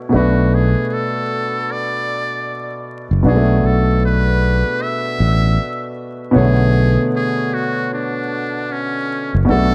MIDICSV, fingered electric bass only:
0, 0, Header, 1, 2, 480
1, 0, Start_track
1, 0, Tempo, 779221
1, 74, Time_signature, 4, 2, 24, 8
1, 6004, End_track
2, 0, Start_track
2, 0, Title_t, "Fingered electric bass"
2, 0, Program_c, 0, 33
2, 86, Note_on_c, 0, 35, 87
2, 454, Note_off_c, 0, 35, 0
2, 1915, Note_on_c, 0, 30, 85
2, 1993, Note_off_c, 0, 30, 0
2, 1998, Note_on_c, 0, 35, 84
2, 2223, Note_off_c, 0, 35, 0
2, 2239, Note_on_c, 0, 35, 82
2, 2847, Note_off_c, 0, 35, 0
2, 3203, Note_on_c, 0, 33, 101
2, 3426, Note_off_c, 0, 33, 0
2, 3917, Note_on_c, 0, 35, 88
2, 4290, Note_off_c, 0, 35, 0
2, 5756, Note_on_c, 0, 30, 88
2, 5833, Note_off_c, 0, 30, 0
2, 5842, Note_on_c, 0, 35, 89
2, 6004, Note_off_c, 0, 35, 0
2, 6004, End_track
0, 0, End_of_file